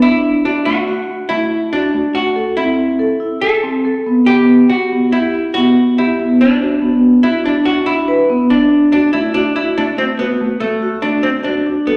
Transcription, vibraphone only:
0.02 D4
0.45 F#4
0.66 A3
0.88 F#4
1.30 A3
1.73 F#4
1.94 A3
2.36 A4
2.57 C4
2.99 A4
3.20 E4
3.42 A4
3.64 C4
3.85 A4
4.06 B3
4.28 B3
4.71 G4
4.92 B3
5.13 G4
5.56 B3
5.98 G4
6.19 B3
6.61 F#4
6.82 B3
7.23 F#4
7.44 D4
7.66 F#4
7.88 D4
8.08 B4
8.30 B3
8.50 D4
8.94 F#4
9.14 A3
9.36 F#4
9.78 A3
10.20 F#4
10.41 A3
10.82 F#4
11.04 A3
11.46 F#4
11.66 D4
11.87 A4

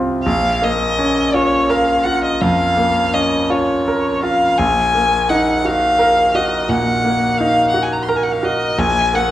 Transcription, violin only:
0.23 F5
0.64 D#5
1.34 C#5
1.70 F5
2.03 F#5
2.24 D#5
2.41 F5
3.13 D#5
3.51 C#5
4.23 F5
4.58 G#5
5.29 F#5
5.66 F5
6.35 D#5
6.69 F#5
7.37 F5
7.70 F#5
7.83 G#5
7.92 A#5
8.03 C6
8.08 A#5
8.16 G#5
8.23 F#5
8.32 F5
8.44 D#5
8.79 G#5
9.15 F#5

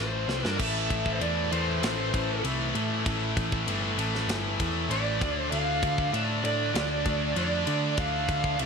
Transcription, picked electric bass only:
Already playing: A1
0.28 C2
0.44 G2
0.59 A1
0.90 A1
1.20 E2
1.52 E2
1.83 A1
2.14 A1
2.44 C2
2.75 A2
3.06 A1
3.37 A1
3.67 G1
3.98 A1
4.28 G1
4.60 E2
4.90 A1
5.22 D2
5.52 D2
5.83 D2
6.13 A2
6.44 A2
6.74 D2
7.06 D2
7.36 F2
7.67 D3
7.98 D2
8.29 D2
8.60 C2

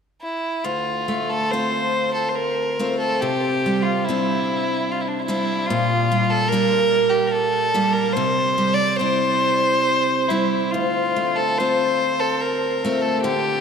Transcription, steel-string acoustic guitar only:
0.64 D2
1.08 A3
1.53 C4 F4
2.79 A3 C4 F4
3.22 C3
3.66 G3
4.09 G3 C4 D4
5.28 G3 C4 D4
5.70 A#2
6.12 G3
6.52 G3 A#3 D4
7.74 G3 A#3 D4
8.17 C3
8.58 G3
8.99 G3 C4 E4
10.30 G3 C4 E4
10.74 D2
11.16 A3
11.60 C4 F4
12.85 A3 C4 F4
13.24 D3

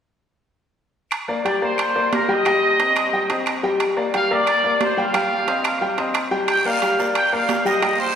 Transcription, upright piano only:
1.28 A#3 A#4 D5
1.45 G3 G4 G5
1.62 A#3 A#4 D5
1.95 A#3 A#4 D5
2.28 G3 G4 G5
2.46 G3 G4 G5
2.80 C4 C5 D#5
3.13 G3 G4 G5
3.29 C4 C5 D#5
3.63 G3 G4 G5
3.96 A#3 A#4 D5
4.14 G3 G4 G5
4.31 A#3 A#4 D5
4.64 A#3 A#4 D5
4.97 G3 G4 G5
5.14 G3 G4 G5
5.48 C4 C5 D#5
5.81 G3 G4 G5
5.98 C4 C5 D#5
6.31 G3 G4 G5
6.65 A#3 A#4 D5
6.82 G3 G4 G5
6.99 A#3 A#4 D5
7.32 A#3 A#4 D5
7.65 G3 G4 G5
7.82 G3 G4 G5

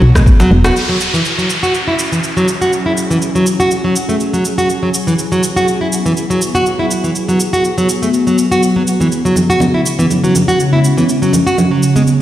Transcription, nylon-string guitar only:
0.15 G#3
0.40 F#3
0.64 F#4
0.89 F#3
1.14 E3
1.38 F#3
1.63 F#4
1.88 E4
2.12 E3
2.37 F#3
2.61 F#4
2.86 E4
3.11 E3
3.35 F#3
3.60 F#4
3.84 F#3
4.09 A3
4.33 F#3
4.58 F#4
4.83 F#3
5.07 E3
5.32 F#3
5.56 F#4
5.81 E4
6.06 E3
6.30 F#3
6.55 F#4
6.79 E4
7.04 E3
7.29 F#3
7.53 F#4
7.78 F#3
8.02 A3
8.27 F#3
8.52 F#4
8.76 F#3
9.01 E3
9.25 F#3
9.50 F#4
9.74 E4
9.99 E3
10.24 F#3
10.48 F#4
10.73 E4
10.97 E3
11.22 F#3
11.47 F#4
11.71 F#3
11.96 G#3

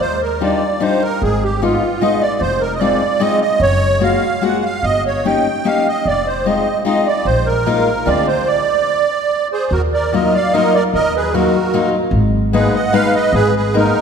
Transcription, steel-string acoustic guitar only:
0.41 G3 D4 D#4 F4
0.80 G3 D4 D#4 F4
1.62 G#3 B3 D#4 F4
2.01 G#3 B3 D#4 F4
2.81 G#3 C4 D#4 F4
3.20 G#3 C4 D#4 F4
4.00 G#3 A#3 F4 F#4
4.41 G#3 A#3 F4 F#4
5.25 A#3 C#4 D#4 G4
5.65 A#3 C#4 D#4 G4
6.46 G#3 C4 D#4 F4
6.85 G#3 C4 D#4 F4
7.66 G#3 A#3 D#4 F4
8.06 G#3 C4 D4 F4
10.13 F#3 A#3 D#4 F4
10.54 F#3 A#3 D#4 F4
11.34 F#3 A#3 D#4 F4
11.74 F#3 A#3 D#4 F4
12.53 G#3 A#3 B3 D#4
12.93 G#3 A#3 B3 D#4
13.74 G#3 A#3 B3 D#4

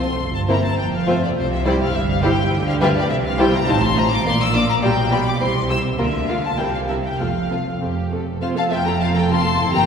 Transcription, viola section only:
0.49 A#3 C4
1.07 A3 C4
1.65 G3 E4
2.23 G3 E4
2.81 G3 F4
3.39 G3 E4
3.68 C4 D#4
3.96 C4 D#4
4.26 A#3 D4
4.55 A#3 D4
4.83 G3 F4
5.12 G3 F4
5.41 G3 E4
5.70 G3 E4
5.99 A#3 F4
6.28 A#3 F4
6.58 G3 C4
6.88 G3 C4
7.19 A3 C4
7.50 A3 C4
7.81 A3 C4
8.12 A3 C4
8.42 C4 F4
8.57 A3 A4
8.72 C4 F4
8.86 A3 A4
9.01 C4 F4
9.16 A3 A4
9.31 C4 F4
9.46 A3 A4
9.60 C4 E4
9.75 A#3 G4

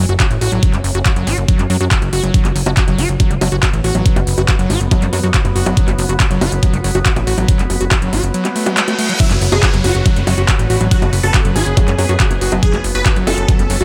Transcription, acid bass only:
0.09 F#4
0.20 F#4
0.41 F#4
0.52 F#3
0.63 F#3
0.73 G#3
0.95 F#4
1.06 F#4
1.16 F#3
1.27 F#4
1.49 F#3
1.59 G#3
1.70 F#3
1.81 F#4
1.91 F#4
2.13 F#4
2.24 F#3
2.34 F#3
2.45 G#3
2.66 F#4
2.77 F#4
2.88 F#3
2.99 F#4
3.20 F#3
3.31 G#3
3.41 F#3
3.52 F#4
3.63 F#4
3.84 F#4
3.95 F#3
4.06 F#3
4.16 G#3
4.38 F#4
4.48 F#4
4.59 F#3
4.70 F#4
4.91 F#3
5.02 G#3
5.13 F#3
5.24 F#4
5.34 F#4
5.56 F#4
5.66 F#3
5.77 F#3
5.88 G#3
6.09 F#4
6.20 F#4
6.31 F#3
6.41 F#4
6.63 F#3
6.73 G#3
6.84 F#3
6.95 F#4
7.06 F#4
7.27 F#4
7.38 F#3
7.48 F#3
7.59 G#3
7.81 F#4
7.91 F#4
8.02 F#3
8.13 F#4
8.34 F#3
8.45 G#3
8.56 A3
8.66 F#3
8.77 G#3
8.88 A3
8.99 A3
9.09 F#3
9.20 F#3
9.31 G#3
9.52 F#4
9.63 F#4
9.74 F#3
9.84 F#4
10.06 F#3
10.16 G#3
10.27 F#3
10.38 F#4
10.49 F#4
10.70 F#4
10.81 F#3
10.91 F#3
11.02 G#3
11.23 F#4
11.34 F#4
11.45 F#3
11.56 F#4
11.77 F#3
11.88 G#3
11.98 F#3
12.09 F#4
12.20 F#4
12.41 F#4
12.52 F#3
12.63 F#3
12.73 G#3
12.95 F#4
13.06 F#4
13.16 F#3
13.27 F#4
13.48 F#3
13.59 G#3
13.70 F#3
13.81 F#4

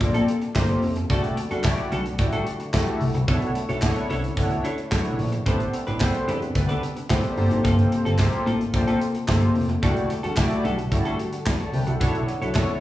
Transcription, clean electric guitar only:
0.00 muted clean electric guitar stroke
0.14 A#3 C4 F4 A4
0.28 muted clean electric guitar stroke
0.42 muted clean electric guitar stroke
0.56 muted clean electric guitar stroke
0.69 muted clean electric guitar stroke
0.96 muted clean electric guitar stroke
1.10 G3 D4 F#4 A4
1.24 muted clean electric guitar stroke
1.37 muted clean electric guitar stroke
1.51 G3 D4 F#4 A4
1.65 muted clean electric guitar stroke
1.78 muted clean electric guitar stroke
1.92 G3 D4 F#4 A4
2.06 muted clean electric guitar stroke
2.19 muted clean electric guitar stroke
2.33 G3 D4 F#4 A4
2.47 muted clean electric guitar stroke
2.60 muted clean electric guitar stroke
2.74 muted clean electric guitar stroke
2.87 muted clean electric guitar stroke
3.15 muted clean electric guitar stroke
3.28 D4 E4 A4 C#5
3.42 muted clean electric guitar stroke
3.55 muted clean electric guitar stroke
3.69 D4 E4 A4 C#5
3.96 muted clean electric guitar stroke
4.10 D4 E4 A4 C#5
4.24 muted clean electric guitar stroke
4.37 muted clean electric guitar stroke
4.51 muted clean electric guitar stroke
4.64 D4 E4 A4 C#5
4.78 muted clean electric guitar stroke
4.91 muted clean electric guitar stroke
5.05 muted clean electric guitar stroke
5.32 muted clean electric guitar stroke
5.46 C4 D4 G4 B4
5.60 muted clean electric guitar stroke
5.73 muted clean electric guitar stroke
5.87 C4 D4 G4 B4
6.14 muted clean electric guitar stroke
6.28 C4 D4 G4 B4
6.42 muted clean electric guitar stroke
6.55 muted clean electric guitar stroke
6.69 C4 D4 G4 B4
6.83 muted clean electric guitar stroke
6.96 muted clean electric guitar stroke
7.10 muted clean electric guitar stroke
7.23 muted clean electric guitar stroke
7.51 muted clean electric guitar stroke
7.64 A#3 C4 F4 A4
7.78 muted clean electric guitar stroke
7.92 muted clean electric guitar stroke
8.05 A#3 C4 F4 A4
8.19 muted clean electric guitar stroke
8.33 muted clean electric guitar stroke
8.46 A#3 C4 F4 A4
8.60 muted clean electric guitar stroke
8.74 muted clean electric guitar stroke
8.87 A#3 C4 F4 A4
9.01 muted clean electric guitar stroke
9.14 muted clean electric guitar stroke
9.28 muted clean electric guitar stroke
9.42 muted clean electric guitar stroke
9.69 muted clean electric guitar stroke
9.82 G3 D4 F#4 A4
9.96 muted clean electric guitar stroke
10.10 muted clean electric guitar stroke
10.23 G3 D4 F#4 A4
10.51 muted clean electric guitar stroke
10.64 G3 D4 F#4 A4
10.78 muted clean electric guitar stroke
10.92 muted clean electric guitar stroke
11.05 G3 D4 F#4 A4
11.19 muted clean electric guitar stroke
11.33 muted clean electric guitar stroke
11.46 muted clean electric guitar stroke
11.60 muted clean electric guitar stroke
11.87 muted clean electric guitar stroke
12.00 D4 E4 A4 C#5
12.14 muted clean electric guitar stroke
12.28 muted clean electric guitar stroke
12.42 D4 E4 A4 C#5
12.55 muted clean electric guitar stroke
12.69 muted clean electric guitar stroke

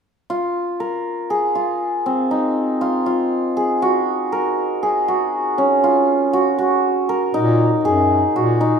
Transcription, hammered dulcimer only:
0.30 F4
0.80 A#4
1.30 G#4
1.55 F4
2.06 C4
2.31 D#4
2.81 F4
3.06 F4
3.57 G#4
3.82 F#4
4.32 A#4
4.83 G#4
5.08 F#4
5.58 C#4
5.84 F4
6.33 F#4
6.58 F#4
7.09 A#4
7.34 D#4
7.85 G#4
8.36 F#4
8.61 D#4

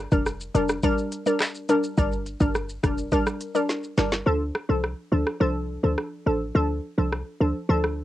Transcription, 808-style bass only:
0.12 F1
0.55 F1
1.98 G1
2.41 G1
2.84 F1
3.98 G1
4.26 D2
4.69 C2
5.12 D2
5.41 C2
5.84 D2
6.26 A1
6.55 D2
6.98 C2
7.40 D2
7.69 D2

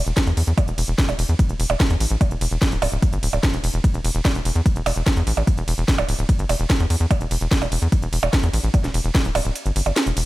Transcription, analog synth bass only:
0.07 E1
0.27 E2
0.37 E2
0.47 E2
0.68 E1
0.78 E1
0.88 E1
1.09 E1
1.19 E1
1.29 E2
1.49 E1
1.60 E1
1.70 E1
1.90 E2
2.00 A1
2.11 A1
2.31 E1
2.41 E1
2.51 E1
2.72 D1
2.82 D1
2.92 D1
3.13 G1
3.23 D1
3.33 D1
3.54 E1
3.64 E1
3.74 E1
3.94 E1
4.04 E1
4.15 E1
4.35 E1
4.45 E1
4.56 E2
4.76 E1
4.86 E1
4.96 E1
5.17 E2
5.27 A1
5.37 A1
5.58 E1
5.68 E1
5.78 E1
5.98 D1
6.09 D1
6.19 D1
6.39 G1
6.49 E1
6.60 E1
6.80 E2
6.90 E2
7.00 E2
7.21 E1
7.31 E1
7.41 E1
7.62 E1
7.72 E1
7.82 E2
8.02 E1
8.13 E1
8.23 E1
8.43 E2
8.54 A1
8.64 A1
8.84 E1
8.94 E1
9.04 E1
9.25 D1
9.35 D1
9.45 D1
9.66 G1
9.76 G1
9.86 G1
10.07 E1
10.17 E1

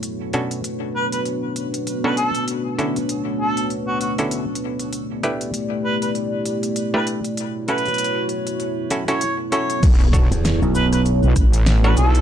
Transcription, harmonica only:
0.95 B4
1.13 B4
2.04 B4
2.17 A4
3.39 A4
3.87 F#4
4.01 F#4
5.84 B4
6.02 B4
6.95 B4
7.68 B4
9.09 C#5
9.51 C#5
10.75 B4
10.93 B4
11.84 B4
11.97 A4

